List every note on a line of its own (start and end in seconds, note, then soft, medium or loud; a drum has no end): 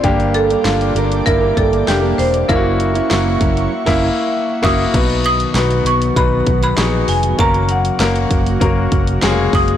0.00 0.54 G1 medium
0.00 0.92 G2 medium
0.00 0.50 G3 medium
0.00 0.59 A#3 medium
0.00 0.60 D4 medium
0.00 0.31 D5 medium
0.00 kick loud
0.00 closed hi-hat medium
0.04 4.90 A#3 medium
0.04 0.50 A#3 medium
0.04 0.50 D4 medium
0.04 0.60 G4 loud
0.04 0.48 A#4 medium
0.04 2.47 D5 medium
0.04 2.47 G5 medium
0.04 2.47 D6 medium
0.20 closed hi-hat soft
0.34 1.29 A4 medium
0.34 closed hi-hat medium
0.49 0.94 G3 soft
0.49 0.95 A#3 soft
0.49 0.96 D4 soft
0.49 0.96 A#4 soft
0.49 closed hi-hat soft
0.64 0.90 G1 medium
0.64 1.20 A#3 medium
0.64 1.21 D4 medium
0.64 1.21 F4 medium
0.64 snare loud
0.64 clap medium
0.64 closed hi-hat medium
0.81 closed hi-hat soft
0.95 1.20 G1 medium
0.95 1.42 G3 medium
0.95 1.42 A#3 medium
0.95 1.41 D4 medium
0.95 1.39 A#4 medium
0.95 closed hi-hat medium
1.12 closed hi-hat soft
1.26 1.52 G1 loud
1.26 1.82 A#3 medium
1.26 1.82 D4 medium
1.26 1.82 E4 medium
1.26 1.58 A#4 medium
1.26 kick medium
1.26 closed hi-hat medium
1.41 2.04 G3 soft
1.41 2.04 A#3 soft
1.41 2.02 D4 medium
1.41 2.02 A#4 medium
1.57 1.82 G1 medium
1.57 1.89 A4 medium
1.57 kick medium
1.57 closed hi-hat medium
1.73 closed hi-hat soft
1.87 2.13 F1 medium
1.87 2.43 A#3 medium
1.87 2.43 D4 medium
1.87 2.44 G4 medium
1.87 2.16 G4 medium
1.87 snare loud
1.87 clap medium
1.87 closed hi-hat medium
2.02 2.48 G3 soft
2.02 2.49 A#3 soft
2.02 2.49 D4 medium
2.02 2.49 A#4 medium
2.18 2.44 E1 medium
2.18 2.47 C5 medium
2.18 open hi-hat medium
2.34 closed hi-hat medium
2.48 2.99 F#1 medium
2.48 2.95 F#3 medium
2.48 3.04 A#3 medium
2.48 2.95 C#4 medium
2.48 3.05 E4 medium
2.48 2.94 E4 medium
2.48 2.56 F4 medium
2.48 4.29 A#4 medium
2.48 2.93 A#4 medium
2.48 4.91 E5 medium
2.48 4.91 F#5 medium
2.48 4.91 C#6 medium
2.48 kick loud
2.48 closed hi-hat medium
2.56 3.08 F#4 loud
2.80 closed hi-hat medium
2.94 3.40 C#4 soft
2.94 3.40 E4 soft
2.94 3.40 A#4 medium
2.94 closed hi-hat soft
3.09 3.36 F#1 medium
3.09 3.66 A#3 medium
3.09 3.66 E4 medium
3.09 3.66 F#4 medium
3.09 snare loud
3.09 clap medium
3.09 closed hi-hat medium
3.40 3.66 F#1 medium
3.40 3.71 F#3 medium
3.40 3.72 C#4 medium
3.40 3.72 E4 medium
3.40 3.72 A#4 medium
3.40 kick medium
3.40 closed hi-hat medium
3.57 closed hi-hat soft
3.86 4.08 F#1 loud
3.86 4.08 A#3 medium
3.86 4.09 C#4 loud
3.86 4.08 E4 medium
3.86 4.08 E4 loud
3.86 4.07 A#4 medium
3.86 kick loud
3.86 snare medium
3.86 crash medium
4.62 4.84 F#1 medium
4.62 4.84 A#3 loud
4.62 4.85 C#4 loud
4.62 4.84 E4 medium
4.62 4.85 E4 medium
4.62 4.84 F#4 loud
4.62 4.84 A#4 medium
4.62 5.25 D#6 loud
4.62 kick loud
4.62 snare loud
4.62 crash medium
4.93 5.44 B1 medium
4.93 5.82 B2 medium
4.93 7.37 D#3 medium
4.93 7.37 F#3 medium
4.93 5.49 B3 medium
4.93 7.37 B3 medium
4.93 5.50 D#4 medium
4.93 5.50 F#4 medium
4.93 7.37 F#4 medium
4.93 5.50 B4 medium
4.93 kick loud
4.93 closed hi-hat medium
4.93 crash medium
5.10 closed hi-hat soft
5.24 5.88 D#6 loud
5.24 closed hi-hat medium
5.40 closed hi-hat medium
5.54 5.80 B1 loud
5.54 6.11 B3 medium
5.54 6.11 D#4 medium
5.54 6.11 F#4 medium
5.54 6.11 B4 medium
5.54 snare loud
5.54 clap medium
5.54 closed hi-hat loud
5.71 closed hi-hat soft
5.85 6.10 B1 loud
5.85 6.18 C#6 medium
5.85 closed hi-hat medium
6.02 closed hi-hat medium
6.16 6.41 B1 medium
6.16 6.72 B3 medium
6.16 6.72 D#4 medium
6.16 6.72 F#4 medium
6.16 6.73 B4 medium
6.16 6.62 B5 loud
6.16 kick loud
6.16 closed hi-hat medium
6.47 6.72 B1 medium
6.47 kick loud
6.47 closed hi-hat medium
6.63 7.06 B5 loud
6.63 closed hi-hat medium
6.77 7.03 A#1 loud
6.77 7.33 B3 medium
6.77 7.33 D#4 medium
6.77 7.33 F#4 medium
6.77 7.34 G#4 medium
6.77 snare loud
6.77 clap medium
6.77 closed hi-hat medium
7.08 7.33 F1 medium
7.08 7.40 G#5 medium
7.08 open hi-hat medium
7.23 closed hi-hat medium
7.38 7.89 F#1 loud
7.38 9.77 C#3 medium
7.38 9.77 F#3 medium
7.38 7.94 A#3 medium
7.38 9.77 A#3 medium
7.38 7.94 C#4 medium
7.38 7.95 F#4 medium
7.38 9.77 F#4 medium
7.38 7.95 A#4 medium
7.38 7.68 A#5 loud
7.38 kick loud
7.38 closed hi-hat medium
7.54 closed hi-hat soft
7.69 9.60 F#5 medium
7.69 closed hi-hat medium
7.85 closed hi-hat medium
7.99 8.25 F#1 loud
7.99 8.56 A#3 medium
7.99 8.56 C#4 medium
7.99 8.56 F#4 medium
7.99 8.56 A#4 medium
7.99 snare loud
7.99 clap loud
7.99 closed hi-hat loud
8.16 closed hi-hat soft
8.31 8.56 F#1 loud
8.31 kick medium
8.31 closed hi-hat medium
8.46 closed hi-hat medium
8.60 8.86 F#1 medium
8.60 9.17 A#3 medium
8.60 9.17 C#4 medium
8.60 9.17 F#4 medium
8.60 9.17 A#4 medium
8.60 kick medium
8.60 closed hi-hat medium
8.92 9.17 F#1 medium
8.92 kick medium
8.92 closed hi-hat medium
9.07 closed hi-hat medium
9.22 9.48 F1 loud
9.22 9.29 G#3 medium
9.22 9.77 C#4 medium
9.22 9.77 F#4 medium
9.22 9.77 G#4 loud
9.22 snare loud
9.22 clap loud
9.22 closed hi-hat medium
9.29 9.77 A#3 medium
9.53 9.77 F#1 loud
9.53 9.77 D#6 loud
9.53 kick loud
9.53 open hi-hat medium
9.68 closed hi-hat medium